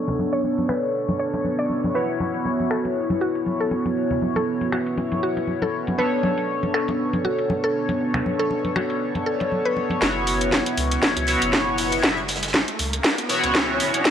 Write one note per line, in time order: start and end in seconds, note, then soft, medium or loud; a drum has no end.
0.00 1.92 B3 medium
0.00 1.92 D4 medium
0.00 1.93 A4 medium
0.00 1.93 C#5 medium
0.08 muted conga medium
0.08 low conga medium
0.19 high conga medium
0.33 0.60 C#5 medium
0.33 closed hi-hat medium
0.44 muted conga soft
0.58 closed hi-hat soft
0.58 high conga medium
0.69 1.07 B4 medium
0.69 finger snap medium
0.69 muted conga medium
0.83 closed hi-hat medium
1.08 closed hi-hat soft
1.08 muted conga soft
1.08 high conga medium
1.19 1.47 C#5 medium
1.34 closed hi-hat medium
1.34 muted conga medium
1.44 high conga medium
1.59 1.86 D5 medium
1.70 muted conga soft
1.84 closed hi-hat medium
1.84 high conga medium
1.94 5.95 B3 medium
1.94 5.96 E4 medium
1.94 5.96 F#4 medium
1.94 2.23 B4 loud
1.94 5.96 C#5 medium
2.20 muted conga soft
2.20 high conga medium
2.34 closed hi-hat medium
2.46 muted conga medium
2.60 closed hi-hat soft
2.60 high conga medium
2.71 3.08 A4 medium
2.71 finger snap medium
2.85 closed hi-hat medium
2.85 muted conga soft
3.10 closed hi-hat soft
3.10 muted conga medium
3.10 high conga medium
3.21 3.49 F#4 medium
3.35 closed hi-hat medium
3.46 muted conga soft
3.46 high conga medium
3.60 3.87 A4 medium
3.71 muted conga medium
3.85 closed hi-hat medium
3.85 high conga medium
4.11 muted conga medium
4.11 low conga medium
4.22 high conga medium
4.36 4.63 A4 medium
4.36 closed hi-hat medium
4.36 muted conga medium
4.61 closed hi-hat soft
4.61 high conga medium
4.72 5.10 F#4 medium
4.72 finger snap medium
4.72 muted conga medium
4.86 closed hi-hat medium
4.97 muted conga medium
5.12 closed hi-hat soft
5.12 high conga medium
5.23 5.50 F#4 medium
5.37 closed hi-hat medium
5.37 muted conga soft
5.47 high conga medium
5.62 5.89 A4 medium
5.62 muted conga medium
5.87 closed hi-hat medium
5.87 high conga medium
5.98 9.99 B3 medium
5.98 9.99 D4 medium
5.98 9.99 A4 medium
5.98 6.26 B4 loud
5.98 10.00 C#5 medium
5.98 muted conga medium
6.23 muted conga medium
6.23 high conga medium
6.38 closed hi-hat medium
6.63 closed hi-hat soft
6.63 muted conga medium
6.63 high conga medium
6.74 7.12 A4 medium
6.74 finger snap medium
6.88 closed hi-hat medium
6.88 muted conga medium
7.13 closed hi-hat soft
7.13 high conga medium
7.25 7.52 F#4 medium
7.25 muted conga medium
7.39 closed hi-hat medium
7.50 muted conga medium
7.50 high conga medium
7.64 7.91 A4 medium
7.89 closed hi-hat medium
7.89 muted conga soft
7.89 high conga medium
8.14 finger snap medium
8.14 closed hi-hat soft
8.14 muted conga medium
8.14 low conga medium
8.26 high conga medium
8.39 8.66 A4 medium
8.39 closed hi-hat medium
8.51 muted conga soft
8.65 closed hi-hat medium
8.65 high conga medium
8.76 9.13 F#4 medium
8.76 finger snap medium
8.76 muted conga medium
8.90 closed hi-hat medium
9.15 closed hi-hat medium
9.15 muted conga soft
9.15 high conga medium
9.26 9.54 A4 medium
9.40 closed hi-hat medium
9.40 muted conga medium
9.52 high conga medium
9.65 9.93 B4 medium
9.65 closed hi-hat soft
9.77 muted conga soft
9.90 closed hi-hat medium
9.90 high conga medium
10.01 10.61 F#1 loud
10.01 11.25 B3 medium
10.01 11.25 E4 medium
10.01 11.25 F#4 medium
10.01 11.26 C#5 loud
10.01 kick loud
10.01 snare soft
10.01 closed hi-hat medium
10.01 riser medium
10.27 closed hi-hat medium
10.27 open hi-hat medium
10.41 closed hi-hat medium
10.52 kick loud
10.52 snare soft
10.52 snare loud
10.52 closed hi-hat medium
10.66 closed hi-hat medium
10.77 10.98 C#2 medium
10.77 closed hi-hat medium
10.77 open hi-hat loud
10.91 snare soft
10.91 closed hi-hat medium
11.03 11.14 E1 medium
11.03 kick loud
11.03 snare soft
11.03 closed hi-hat medium
11.17 11.36 C#2 medium
11.17 closed hi-hat medium
11.27 12.01 B3 medium
11.27 12.01 E4 medium
11.27 12.01 F#4 medium
11.27 12.01 C#5 loud
11.27 closed hi-hat medium
11.27 open hi-hat medium
11.42 12.00 F#1 medium
11.42 closed hi-hat soft
11.42 closed hi-hat medium
11.53 kick loud
11.53 snare loud
11.53 snare soft
11.53 closed hi-hat medium
11.78 open hi-hat medium
11.78 open hi-hat loud
11.92 closed hi-hat medium
12.03 12.63 F#1 medium
12.03 12.17 B3 medium
12.03 12.17 E4 medium
12.03 12.17 F#4 medium
12.03 12.17 E5 medium
12.03 kick loud
12.03 snare medium
12.03 closed hi-hat medium
12.17 closed hi-hat soft
12.28 snare medium
12.28 closed hi-hat medium
12.28 open hi-hat loud
12.36 snare medium
12.36 closed hi-hat medium
12.42 snare medium
12.42 closed hi-hat medium
12.48 snare medium
12.48 closed hi-hat medium
12.54 kick loud
12.54 snare loud
12.54 snare medium
12.54 closed hi-hat medium
12.68 closed hi-hat soft
12.79 12.99 C#2 medium
12.79 closed hi-hat medium
12.79 open hi-hat loud
12.93 closed hi-hat medium
13.04 kick loud
13.04 snare medium
13.04 closed hi-hat medium
13.18 closed hi-hat medium
13.29 14.02 B3 loud
13.29 14.02 E4 medium
13.29 14.03 F#4 medium
13.29 14.03 C#5 loud
13.29 closed hi-hat medium
13.29 open hi-hat loud
13.43 13.81 C#2 medium
13.43 snare soft
13.43 closed hi-hat medium
13.54 kick loud
13.54 snare loud
13.54 snare medium
13.54 closed hi-hat medium
13.80 13.91 F#1 loud
13.80 closed hi-hat medium
13.80 open hi-hat loud
13.94 closed hi-hat medium
14.04 14.10 B1 loud
14.04 14.10 B3 medium
14.04 14.10 D4 medium
14.04 14.10 A4 medium
14.04 14.10 C#5 loud
14.04 kick loud
14.04 snare medium
14.04 closed hi-hat medium